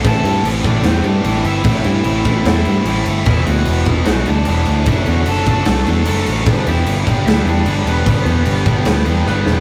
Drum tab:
CC |xxxxxxxx|xxxxxxxx|xxxxxxxx|xxxxxxxx|
SD |----o---|----o---|----o---|----o---|
BD |o--o----|o--o----|o--o----|o--o----|

CC |xxxxxxxx|xxxxxx--|
SD |----o---|----o-oo|
BD |o--o----|o--o----|